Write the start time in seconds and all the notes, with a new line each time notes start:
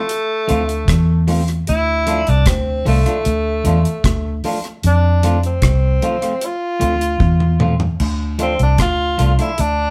Already playing: A3
0.09 closed hi-hat
0.48 D2 F3 A3 C4 F4, closed hi-hat
0.69 closed hi-hat
0.88 E2, kick, cross-stick, closed hi-hat
1.28 F3 A3 C4 F4, open hi-hat
1.48 closed hi-hat
1.67 D2 E4, closed hi-hat
2.07 F3 A3 D4 F4, closed hi-hat
2.27 C2 D4, closed hi-hat
2.46 D2 C4, kick, cross-stick, closed hi-hat
2.85 C2 F3 A3 D4 F4, open hi-hat
3.05 F3 A3 D4 F4, closed hi-hat
3.25 D2, closed hi-hat
3.64 E2 F3 A3 D4 F4, closed hi-hat
3.85 closed hi-hat
4.04 D2, kick, cross-stick, closed hi-hat
4.44 F3 A3 D4 F4, open hi-hat
4.64 closed hi-hat
4.83 F2 D4, closed hi-hat
5.23 F3 A3 C4 F4, closed hi-hat
5.43 C4, closed hi-hat
5.62 C2, kick, cross-stick, closed hi-hat
6.02 F3 A3 C4 F4, closed hi-hat
6.22 F3 A3 C4 F4, closed hi-hat
6.41 F4, closed hi-hat
6.80 D2 F3 A3 C4 F4, closed hi-hat
7.01 closed hi-hat
7.20 E2, kick, high tom
7.40 mid tom
7.60 F3 A3 C4 F4, mid tom
7.80 floor tom
8.00 D2, splash
8.39 F3 A3 C4 D4 F4, closed hi-hat
8.59 C2 D4, closed hi-hat
8.78 D2 F4, kick, cross-stick, closed hi-hat
9.18 C2 F3 A3 D4 F4, closed hi-hat
9.38 F3 A3 D4 E4 F4, closed hi-hat
9.58 D2 D4, closed hi-hat